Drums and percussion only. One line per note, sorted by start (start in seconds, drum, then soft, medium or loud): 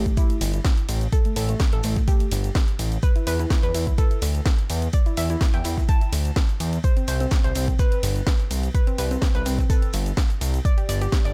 0.06 kick medium
0.06 closed hi-hat soft
0.06 cabasa soft
0.17 kick loud
0.17 closed hi-hat medium
0.17 cabasa soft
0.17 shaker medium
0.30 closed hi-hat soft
0.30 cabasa soft
0.41 snare soft
0.41 open hi-hat loud
0.41 ride medium
0.41 cabasa medium
0.41 shaker medium
0.54 closed hi-hat soft
0.54 cabasa soft
0.65 kick loud
0.65 snare loud
0.65 closed hi-hat medium
0.65 cabasa soft
0.65 shaker medium
0.77 closed hi-hat soft
0.77 cabasa soft
0.89 open hi-hat medium
0.89 ride medium
0.89 cabasa medium
0.89 shaker medium
1.01 closed hi-hat soft
1.01 cabasa soft
1.12 kick loud
1.12 closed hi-hat medium
1.12 cabasa soft
1.12 shaker medium
1.25 closed hi-hat soft
1.25 cabasa soft
1.36 open hi-hat loud
1.36 ride medium
1.36 cabasa medium
1.36 shaker medium
1.49 closed hi-hat soft
1.49 cabasa soft
1.60 kick loud
1.60 snare loud
1.60 closed hi-hat medium
1.60 cabasa soft
1.60 shaker medium
1.73 closed hi-hat soft
1.73 cabasa soft
1.83 snare medium
1.83 open hi-hat medium
1.83 ride medium
1.83 cabasa medium
1.83 shaker medium
1.96 kick medium
1.96 snare soft
1.96 closed hi-hat soft
1.96 cabasa soft
2.08 kick loud
2.08 closed hi-hat medium
2.08 cabasa soft
2.08 shaker medium
2.20 closed hi-hat soft
2.20 cabasa soft
2.31 snare soft
2.31 open hi-hat loud
2.31 ride medium
2.31 cabasa medium
2.31 shaker medium
2.44 closed hi-hat soft
2.44 cabasa soft
2.55 kick loud
2.55 snare loud
2.55 closed hi-hat medium
2.55 cabasa soft
2.55 shaker medium
2.68 closed hi-hat soft
2.68 cabasa soft
2.79 open hi-hat medium
2.79 ride medium
2.79 cabasa medium
2.79 shaker medium
2.92 closed hi-hat soft
2.92 cabasa soft
3.03 kick loud
3.03 closed hi-hat medium
3.03 cabasa soft
3.03 shaker medium
3.16 closed hi-hat soft
3.16 cabasa soft
3.27 open hi-hat loud
3.27 ride medium
3.27 cabasa medium
3.27 shaker medium
3.39 closed hi-hat soft
3.39 cabasa soft
3.50 kick loud
3.50 snare loud
3.50 closed hi-hat medium
3.50 cabasa soft
3.50 shaker loud
3.63 closed hi-hat soft
3.63 cabasa soft
3.74 open hi-hat loud
3.74 ride medium
3.74 cabasa medium
3.74 shaker medium
3.87 kick medium
3.87 closed hi-hat soft
3.87 cabasa soft
3.98 kick loud
3.98 closed hi-hat medium
3.98 cabasa soft
3.98 shaker medium
4.11 closed hi-hat soft
4.11 cabasa soft
4.22 snare soft
4.22 open hi-hat loud
4.22 ride medium
4.22 cabasa medium
4.22 shaker medium
4.35 closed hi-hat soft
4.35 cabasa soft
4.46 kick loud
4.46 snare loud
4.46 closed hi-hat medium
4.46 cabasa soft
4.46 shaker medium
4.59 closed hi-hat soft
4.59 cabasa soft
4.70 open hi-hat medium
4.70 ride medium
4.70 cabasa medium
4.70 shaker medium
4.82 closed hi-hat soft
4.82 cabasa soft
4.93 kick loud
4.93 closed hi-hat medium
4.93 cabasa soft
4.93 shaker medium
5.06 closed hi-hat soft
5.06 cabasa soft
5.17 open hi-hat loud
5.17 ride medium
5.17 cabasa medium
5.17 shaker medium
5.30 closed hi-hat soft
5.30 cabasa soft
5.41 kick loud
5.41 snare loud
5.41 closed hi-hat medium
5.41 cabasa soft
5.41 shaker medium
5.54 closed hi-hat soft
5.54 cabasa soft
5.64 snare medium
5.64 open hi-hat loud
5.64 ride medium
5.64 cabasa medium
5.64 shaker medium
5.78 kick medium
5.78 snare soft
5.78 closed hi-hat soft
5.78 cabasa soft
5.88 kick loud
5.88 closed hi-hat medium
5.88 cabasa soft
5.88 shaker medium
6.01 closed hi-hat soft
6.01 cabasa soft
6.12 snare soft
6.12 open hi-hat loud
6.12 ride medium
6.12 cabasa medium
6.12 shaker medium
6.25 closed hi-hat soft
6.25 cabasa soft
6.36 kick loud
6.36 snare loud
6.36 closed hi-hat medium
6.36 cabasa soft
6.36 shaker medium
6.49 closed hi-hat soft
6.49 cabasa soft
6.60 open hi-hat medium
6.60 ride medium
6.60 cabasa medium
6.60 shaker medium
6.73 closed hi-hat soft
6.73 cabasa soft
6.84 kick loud
6.84 closed hi-hat medium
6.84 cabasa soft
6.84 shaker medium
6.97 closed hi-hat soft
6.97 cabasa soft
7.08 open hi-hat loud
7.08 ride medium
7.08 cabasa medium
7.08 shaker medium
7.20 closed hi-hat soft
7.20 cabasa soft
7.31 kick loud
7.31 snare loud
7.31 closed hi-hat medium
7.31 cabasa soft
7.31 shaker medium
7.44 closed hi-hat soft
7.44 cabasa soft
7.55 open hi-hat medium
7.55 ride medium
7.55 cabasa medium
7.55 shaker medium
7.68 kick medium
7.68 closed hi-hat soft
7.68 cabasa soft
7.79 kick loud
7.79 closed hi-hat medium
7.79 cabasa soft
7.79 shaker medium
7.92 closed hi-hat soft
7.92 cabasa soft
8.03 snare soft
8.03 open hi-hat loud
8.03 ride medium
8.03 cabasa medium
8.03 shaker medium
8.16 closed hi-hat soft
8.16 cabasa soft
8.27 kick loud
8.27 snare loud
8.27 closed hi-hat medium
8.27 cabasa soft
8.27 shaker medium
8.40 closed hi-hat soft
8.40 cabasa soft
8.51 open hi-hat medium
8.51 ride medium
8.51 cabasa medium
8.51 shaker medium
8.63 closed hi-hat soft
8.63 cabasa soft
8.75 kick loud
8.75 closed hi-hat medium
8.75 cabasa soft
8.75 shaker medium
8.87 closed hi-hat soft
8.87 cabasa soft
8.98 open hi-hat loud
8.98 ride medium
8.98 cabasa medium
8.98 shaker medium
9.11 closed hi-hat soft
9.11 cabasa soft
9.21 kick loud
9.21 snare loud
9.21 closed hi-hat medium
9.21 cabasa soft
9.21 shaker medium
9.35 closed hi-hat soft
9.35 cabasa soft
9.45 snare medium
9.45 open hi-hat medium
9.45 ride medium
9.45 cabasa medium
9.45 shaker medium
9.59 kick medium
9.59 snare soft
9.59 closed hi-hat soft
9.59 cabasa soft
9.70 kick loud
9.70 closed hi-hat medium
9.70 cabasa soft
9.70 shaker medium
9.82 closed hi-hat soft
9.82 cabasa soft
9.93 snare soft
9.93 open hi-hat loud
9.93 ride medium
9.93 cabasa medium
9.93 shaker medium
10.06 closed hi-hat soft
10.06 cabasa soft
10.17 kick loud
10.17 snare loud
10.17 closed hi-hat medium
10.17 cabasa soft
10.17 shaker loud
10.30 closed hi-hat soft
10.30 cabasa soft
10.41 open hi-hat medium
10.41 ride medium
10.41 cabasa medium
10.41 shaker medium
10.54 closed hi-hat soft
10.54 cabasa soft
10.65 kick loud
10.65 closed hi-hat medium
10.65 cabasa soft
10.65 shaker loud
10.78 closed hi-hat soft
10.78 cabasa soft
10.89 open hi-hat loud
10.89 ride medium
10.89 cabasa medium
10.89 shaker medium
11.01 closed hi-hat soft
11.01 cabasa soft
11.12 kick loud
11.12 snare loud
11.12 closed hi-hat medium
11.12 cabasa soft
11.12 shaker medium
11.25 closed hi-hat soft
11.25 cabasa soft